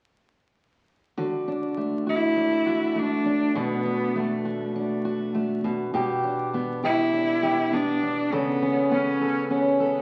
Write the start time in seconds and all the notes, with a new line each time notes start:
1.17 D3 F#4
1.48 D4
1.77 A3
2.07 E4 F#4
2.36 D4
2.66 F#4
2.95 A3 D4
3.25 D4
3.55 B2 B3 F#4
3.85 D4
4.15 A3
4.45 F#4
4.76 A3 D4
5.05 F#4
5.35 A3
5.64 B2
5.94 B2 G4
6.24 D4
6.54 B3
6.84 E4 G4
7.13 D4
7.43 G4
7.73 B3 D4
8.03 D4
8.32 C#3 B3 A4
8.62 C#4
8.91 B3 C#4
9.21 A4
9.50 B3 C#4
9.80 A4